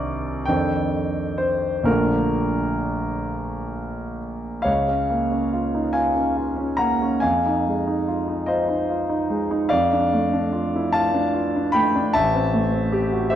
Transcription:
0.00 0.44 C2 medium
0.00 0.44 D#3 soft
0.00 0.44 C4 soft
0.00 0.44 D4 soft
0.00 0.45 A#4 soft
0.00 0.47 D5 medium
0.45 1.82 F2 soft
0.45 1.83 D#3 soft
0.45 1.83 C4 soft
0.45 1.83 D4 soft
0.45 1.38 G5 medium
0.50 1.83 A4 soft
1.38 1.86 C5 medium
1.84 4.61 A#1 soft
1.84 4.62 D3 soft
1.84 4.62 A3 soft
1.84 4.62 D4 soft
1.84 4.63 F4 soft
1.84 4.19 A#4 medium
4.62 7.18 C#2 soft
4.62 5.90 C#5 soft
4.62 5.91 F5 medium
4.88 5.23 C#4 soft
5.10 5.45 A#3 soft
5.32 5.66 C#4 soft
5.53 5.87 F4 soft
5.75 5.96 D#4 soft
5.93 6.29 F4 soft
5.93 6.75 F5 soft
5.93 6.79 G#5 medium
6.15 6.49 C#4 soft
6.37 6.71 F4 soft
6.57 6.92 C#4 soft
6.77 7.14 A#3 soft
6.77 7.19 F#5 medium
6.77 7.21 A#5 medium
7.02 7.23 C#4 soft
7.20 9.67 F2 soft
7.20 8.44 F5 medium
7.20 8.47 G#5 medium
7.46 7.79 D#4 soft
7.67 8.00 G#3 soft
7.87 8.20 D#4 soft
8.08 8.41 F4 soft
8.28 8.48 D#4 soft
8.46 8.80 F4 soft
8.46 9.67 C5 soft
8.46 9.70 D#5 medium
8.68 9.01 D#4 soft
8.90 9.22 F4 soft
9.09 9.42 D#4 soft
9.30 9.63 G#3 soft
9.51 9.72 D#4 soft
9.69 12.12 F2 soft
9.69 10.89 D5 medium
9.69 10.92 F5 medium
9.93 10.25 D4 soft
10.13 10.45 A3 soft
10.33 10.65 D4 soft
10.53 10.85 F4 soft
10.76 10.95 E4 soft
10.92 11.27 F4 soft
10.92 11.71 F5 medium
10.92 11.75 A5 medium
11.14 11.47 D4 soft
11.34 11.67 F4 soft
11.56 11.88 D4 soft
11.72 12.07 A3 soft
11.72 12.12 G5 medium
11.72 12.14 B5 medium
11.96 12.16 D4 soft
12.13 13.35 A1 medium
12.13 13.28 E5 medium
12.13 13.34 A5 medium
12.34 12.66 C4 soft
12.54 12.86 A3 soft
12.73 13.06 C4 soft
12.93 13.25 G4 medium
13.12 13.33 F#4 soft
13.30 13.35 G4 soft
13.30 13.35 C5 medium
13.30 13.35 E5 medium

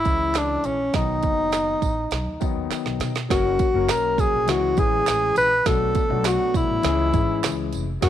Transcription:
0.00 0.39 E4 loud
0.05 0.55 C#2 medium
0.05 0.74 E3 medium
0.05 0.74 G#3 medium
0.05 0.74 C#4 medium
0.05 0.74 E4 medium
0.05 kick medium
0.05 closed hi-hat medium
0.05 tambourine soft
0.35 0.68 D4 medium
0.35 snare loud
0.35 clap medium
0.35 closed hi-hat medium
0.35 tambourine medium
0.64 0.89 A#1 medium
0.64 0.97 C#4 medium
0.64 closed hi-hat medium
0.64 tambourine medium
0.93 1.19 B1 loud
0.93 1.85 D#3 medium
0.93 1.85 F#3 medium
0.93 1.85 B3 medium
0.93 1.86 D#4 medium
0.93 2.72 D#4 medium
0.93 kick loud
0.93 snare loud
0.93 closed hi-hat medium
0.93 tambourine soft
1.23 1.73 F#1 medium
1.23 kick medium
1.23 closed hi-hat medium
1.23 tambourine soft
1.52 snare loud
1.52 clap medium
1.52 closed hi-hat medium
1.52 tambourine medium
1.82 2.07 A1 medium
1.82 kick medium
1.82 closed hi-hat medium
1.82 tambourine medium
2.11 2.24 B1 medium
2.11 snare loud
2.11 closed hi-hat medium
2.26 2.39 D#2 medium
2.40 3.09 D#3 medium
2.40 3.10 F#3 medium
2.40 3.10 B3 medium
2.40 3.10 D#4 medium
2.40 kick medium
2.40 closed hi-hat medium
2.40 tambourine soft
2.55 2.68 D#2 medium
2.70 muted upright bass stroke soft
2.70 snare medium
2.70 clap medium
2.70 closed hi-hat medium
2.70 tambourine medium
2.85 2.98 B1 medium
2.85 snare medium
3.00 3.25 B2 medium
3.00 snare medium
3.00 closed hi-hat medium
3.00 tambourine soft
3.15 snare medium
3.15 closed hi-hat soft
3.29 3.55 F#1 loud
3.29 3.64 F#3 medium
3.29 3.64 A#3 medium
3.29 3.64 C#4 medium
3.29 3.65 F#4 medium
3.29 3.92 F#4 loud
3.29 3.65 A#4 medium
3.29 kick loud
3.29 snare loud
3.29 closed hi-hat loud
3.29 tambourine soft
3.59 kick medium
3.59 closed hi-hat medium
3.59 tambourine soft
3.74 3.87 F#1 loud
3.74 4.48 F#3 medium
3.74 4.48 A#3 medium
3.74 4.46 C#4 medium
3.74 4.49 F#4 medium
3.74 4.49 A#4 medium
3.89 4.26 B1 medium
3.89 4.21 A#4 loud
3.89 snare loud
3.89 clap loud
3.89 closed hi-hat medium
3.89 tambourine medium
4.18 4.51 G#4 medium
4.18 kick medium
4.18 closed hi-hat medium
4.18 tambourine medium
4.33 4.47 A#1 medium
4.47 4.73 C#2 medium
4.47 4.71 E3 medium
4.47 4.72 G#3 medium
4.47 4.72 C#4 medium
4.47 4.72 E4 medium
4.47 4.81 F#4 medium
4.47 4.72 G#4 medium
4.47 snare loud
4.47 closed hi-hat medium
4.47 tambourine soft
4.76 5.03 A1 loud
4.76 5.45 E3 medium
4.76 5.46 G#3 medium
4.76 5.46 C#4 medium
4.76 5.46 E4 medium
4.76 5.46 G#4 medium
4.76 5.37 G#4 loud
4.76 kick medium
4.76 closed hi-hat medium
4.76 tambourine medium
5.06 5.32 A1 medium
5.06 snare loud
5.06 clap loud
5.06 closed hi-hat medium
5.06 tambourine loud
5.36 5.61 A#1 medium
5.36 5.69 B4 loud
5.36 closed hi-hat medium
5.36 tambourine medium
5.65 5.91 B1 loud
5.65 6.00 F#3 medium
5.65 6.00 A3 medium
5.65 6.00 B3 medium
5.65 6.00 D4 medium
5.65 6.01 F#4 medium
5.65 6.28 A4 loud
5.65 kick loud
5.65 snare loud
5.65 closed hi-hat loud
5.65 tambourine soft
5.95 kick medium
5.95 closed hi-hat medium
5.95 tambourine soft
6.09 6.35 B1 loud
6.09 6.83 F#3 medium
6.09 6.84 A3 medium
6.09 6.84 B3 medium
6.09 6.84 D4 medium
6.09 6.84 F#4 medium
6.25 6.58 F#4 loud
6.25 snare loud
6.25 clap loud
6.25 closed hi-hat medium
6.25 tambourine loud
6.54 6.67 B1 medium
6.54 7.74 E4 medium
6.54 kick medium
6.54 closed hi-hat medium
6.54 tambourine medium
6.69 6.82 A1 medium
6.83 7.09 C#2 loud
6.83 7.07 E3 medium
6.83 7.07 G#3 medium
6.83 7.08 C#4 medium
6.83 7.08 E4 medium
6.83 7.08 G#4 loud
6.83 snare loud
6.83 closed hi-hat medium
6.83 tambourine soft
7.12 7.39 G#2 medium
7.12 7.81 E3 medium
7.12 7.81 G#3 medium
7.12 7.82 C#4 medium
7.12 7.20 D#4 medium
7.12 7.82 G#4 medium
7.12 kick medium
7.12 closed hi-hat medium
7.12 tambourine medium
7.20 7.85 E4 medium
7.44 7.68 C#2 medium
7.44 snare loud
7.44 clap loud
7.44 closed hi-hat medium
7.44 tambourine loud
7.73 7.98 F1 medium
7.73 closed hi-hat medium
7.73 tambourine medium
8.01 8.09 F#1 loud
8.01 8.09 F#3 medium
8.01 8.09 A#3 medium
8.01 8.09 C#4 medium
8.01 8.09 F#4 medium
8.01 8.09 F#4 loud
8.01 8.09 A#4 medium
8.01 kick loud
8.01 snare loud
8.01 closed hi-hat loud
8.01 tambourine soft

